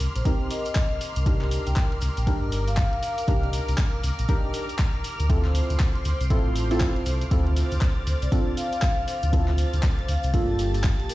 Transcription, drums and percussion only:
0.00 open hi-hat, ride, shaker
0.15 closed hi-hat, ride, shaker
0.25 kick, closed hi-hat, ride, shaker
0.50 open hi-hat, ride, shaker
0.65 closed hi-hat, shaker
0.75 kick, snare, clap, closed hi-hat, ride, shaker
1.01 open hi-hat, ride, shaker
1.16 closed hi-hat, shaker
1.26 kick, closed hi-hat, ride, shaker
1.41 snare, clap
1.51 open hi-hat, ride, shaker
1.67 closed hi-hat, shaker
1.76 kick, snare, clap, closed hi-hat, ride, shaker
1.92 ride
2.01 open hi-hat, ride, shaker
2.17 closed hi-hat, shaker
2.27 kick, closed hi-hat, ride, shaker
2.52 open hi-hat, ride, shaker
2.68 snare, closed hi-hat, shaker
2.77 kick, snare, clap, closed hi-hat, ride, shaker
2.93 ride
3.03 open hi-hat, ride, shaker
3.18 closed hi-hat, shaker
3.28 kick, closed hi-hat, ride, shaker
3.43 ride
3.53 open hi-hat, ride, shaker
3.68 closed hi-hat, ride, shaker
3.78 kick, snare, clap, closed hi-hat, ride, shaker
4.04 open hi-hat, ride, shaker
4.19 closed hi-hat, ride, shaker
4.28 kick, closed hi-hat, ride, shaker
4.54 open hi-hat, ride, shaker
4.69 closed hi-hat, shaker
4.79 kick, snare, clap, closed hi-hat, ride, shaker
5.04 open hi-hat, ride, shaker
5.20 closed hi-hat, shaker
5.29 kick, closed hi-hat, ride, shaker
5.44 snare, clap
5.55 open hi-hat, ride, shaker
5.70 closed hi-hat, shaker
5.80 kick, snare, clap, closed hi-hat, ride, shaker
5.95 ride
6.05 open hi-hat, ride, shaker
6.21 closed hi-hat, shaker
6.30 kick, closed hi-hat, ride, shaker
6.56 open hi-hat, ride, shaker
6.71 snare, closed hi-hat, shaker
6.80 kick, snare, clap, closed hi-hat, ride, shaker
6.96 ride
7.06 open hi-hat, ride, shaker
7.21 closed hi-hat, shaker
7.31 kick, closed hi-hat, ride, shaker
7.47 ride
7.56 open hi-hat, ride, shaker
7.71 closed hi-hat, ride, shaker
7.81 kick, snare, clap, closed hi-hat, ride
8.07 open hi-hat, ride, shaker
8.22 closed hi-hat, ride, shaker
8.32 kick, closed hi-hat, ride, shaker
8.57 open hi-hat, ride, shaker
8.72 closed hi-hat, shaker
8.82 kick, snare, clap, closed hi-hat, ride, shaker
9.08 open hi-hat, ride, shaker
9.23 closed hi-hat, shaker
9.33 kick, closed hi-hat, ride, shaker
9.48 snare, clap
9.58 open hi-hat, ride, shaker
9.73 closed hi-hat, shaker
9.83 kick, snare, clap, closed hi-hat, ride, shaker
9.99 ride
10.08 open hi-hat, ride, shaker
10.23 closed hi-hat, shaker
10.34 kick, closed hi-hat, ride, shaker
10.59 open hi-hat, ride, shaker
10.74 snare, closed hi-hat, shaker
10.84 kick, snare, clap, closed hi-hat, ride, shaker
11.00 ride
11.09 open hi-hat, ride, shaker

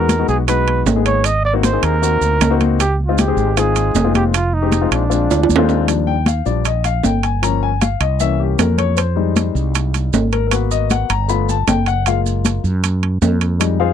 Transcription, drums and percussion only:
0.09 high conga, high timbale, low timbale, maracas
0.28 high conga, maracas
0.48 high conga, high timbale, maracas
0.67 high conga, high timbale
0.86 high conga, low timbale, maracas
1.06 high timbale, maracas
1.24 high conga, high timbale, maracas
1.45 high conga
1.63 high conga, high timbale, low timbale, maracas
1.83 high conga, high timbale, maracas
2.03 high conga, maracas
2.22 high conga, maracas
2.41 high conga, high timbale, low timbale, maracas
2.60 high conga, high timbale, maracas
2.80 high conga, high timbale, maracas
3.00 high conga
3.18 high conga, high timbale, low timbale, maracas
3.38 high conga, maracas
3.57 high conga, high timbale, maracas
3.76 high conga, high timbale, maracas
3.95 high conga, low timbale, maracas
4.15 high conga, high timbale, maracas
4.34 high conga, high timbale, maracas
4.53 high conga
4.72 high conga, high timbale, low timbale, maracas
4.91 high conga, high timbale, maracas
5.10 high conga, maracas
5.30 high conga, high timbale, maracas
5.43 high timbale
5.49 high conga, maracas
5.56 low timbale
5.69 low timbale, maracas
5.88 high conga, high timbale, maracas
6.07 high conga
6.26 high conga, high timbale, low timbale, maracas
6.46 high conga, maracas
6.65 high conga, high timbale, maracas
6.84 high conga, high timbale, maracas
7.03 high conga, low timbale, maracas
7.23 high timbale, maracas
7.43 high conga, high timbale, maracas
7.63 high conga
7.81 high conga, high timbale, low timbale, maracas
8.01 high conga, high timbale, maracas
8.20 high conga, maracas
8.40 high conga
8.59 high conga, high timbale, low timbale, maracas
8.78 high conga, high timbale, maracas
8.97 high conga, high timbale, maracas
9.17 high conga
9.36 high conga, high timbale, low timbale, maracas
9.56 high conga, maracas
9.75 high conga, high timbale, maracas
9.94 high conga, high timbale, maracas
10.13 high conga, low timbale, maracas
10.32 high timbale, maracas
10.51 high conga, high timbale, maracas
10.71 high conga, maracas
10.90 high conga, high timbale, low timbale, maracas
11.10 high conga, high timbale, maracas
11.29 high conga, maracas
11.49 high conga, maracas
11.68 high conga, high timbale, low timbale, maracas
11.86 high timbale, maracas
12.06 high conga, high timbale, maracas
12.26 high conga, maracas
12.45 high conga, high timbale, low timbale, maracas
12.65 high conga, maracas
12.84 high conga, high timbale, maracas
13.03 high conga, high timbale
13.22 high conga, low timbale, maracas
13.41 high timbale, maracas
13.60 high conga, high timbale, maracas
13.81 high conga

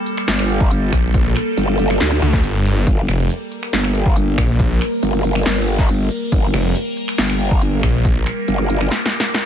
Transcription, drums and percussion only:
0.06 closed hi-hat
0.18 finger snap
0.28 snare, closed hi-hat
0.39 finger snap
0.49 closed hi-hat
0.61 kick
0.71 closed hi-hat
0.93 finger snap, kick, closed hi-hat
1.14 kick, closed hi-hat
1.36 finger snap, closed hi-hat
1.57 closed hi-hat
1.79 closed hi-hat
1.90 finger snap
2.00 snare, closed hi-hat
2.22 closed hi-hat
2.33 kick, snare
2.44 closed hi-hat
2.65 closed hi-hat
2.87 kick, closed hi-hat
3.08 finger snap, closed hi-hat
3.30 closed hi-hat
3.52 closed hi-hat
3.63 finger snap
3.73 snare, closed hi-hat
3.84 finger snap
3.95 closed hi-hat
4.06 kick
4.16 closed hi-hat
4.38 finger snap, kick, closed hi-hat
4.59 kick, closed hi-hat
4.81 finger snap, closed hi-hat
5.03 closed hi-hat
5.24 closed hi-hat
5.35 finger snap
5.46 snare, closed hi-hat
5.67 closed hi-hat
5.79 kick, snare
5.89 closed hi-hat
6.11 closed hi-hat
6.32 kick, closed hi-hat
6.54 finger snap, closed hi-hat
6.75 closed hi-hat
6.97 closed hi-hat
7.08 finger snap
7.18 snare, closed hi-hat
7.30 finger snap
7.40 closed hi-hat
7.51 kick
7.62 closed hi-hat
7.83 finger snap, kick, closed hi-hat
8.05 kick, closed hi-hat
8.26 finger snap, closed hi-hat
8.48 closed hi-hat
8.70 closed hi-hat
8.81 finger snap
8.91 snare, closed hi-hat
9.06 snare
9.13 closed hi-hat
9.20 snare
9.34 snare, closed hi-hat

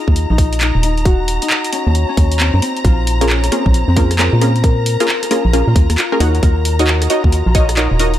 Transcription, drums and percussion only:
0.08 kick
0.16 closed hi-hat
0.38 kick, open hi-hat
0.53 closed hi-hat
0.61 clap, closed hi-hat
0.83 open hi-hat
0.97 closed hi-hat
1.05 kick, closed hi-hat
1.28 open hi-hat
1.42 closed hi-hat
1.50 clap
1.64 closed hi-hat
1.73 open hi-hat
1.95 closed hi-hat
2.17 kick, open hi-hat
2.32 closed hi-hat
2.40 clap, closed hi-hat
2.62 open hi-hat
2.77 closed hi-hat
2.85 kick, closed hi-hat
3.07 open hi-hat
3.21 closed hi-hat
3.30 clap
3.44 cross-stick, closed hi-hat
3.52 cross-stick, open hi-hat
3.66 kick
3.74 closed hi-hat
3.97 kick, open hi-hat
4.11 cross-stick, closed hi-hat
4.19 clap, closed hi-hat
4.42 open hi-hat
4.56 closed hi-hat
4.64 kick, closed hi-hat
4.86 open hi-hat
5.00 closed hi-hat
5.09 clap
5.23 cross-stick, closed hi-hat
5.31 open hi-hat
5.53 closed hi-hat
5.76 kick, open hi-hat
5.90 cross-stick, closed hi-hat
5.98 clap, closed hi-hat
6.20 open hi-hat
6.35 closed hi-hat
6.43 kick, closed hi-hat
6.65 open hi-hat
6.79 closed hi-hat
6.87 clap
7.02 cross-stick, closed hi-hat
7.10 open hi-hat
7.24 kick
7.32 closed hi-hat
7.55 kick, open hi-hat
7.69 cross-stick, closed hi-hat
7.77 clap, closed hi-hat
7.99 open hi-hat
8.14 closed hi-hat

